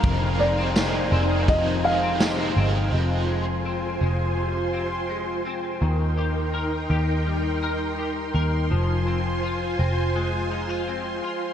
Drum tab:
RD |x-x-x-x-|--------|--------|--------|
TB |--x---x-|--------|--------|--------|
SD |--o---o-|--------|--------|--------|
BD |o---o---|--------|--------|--------|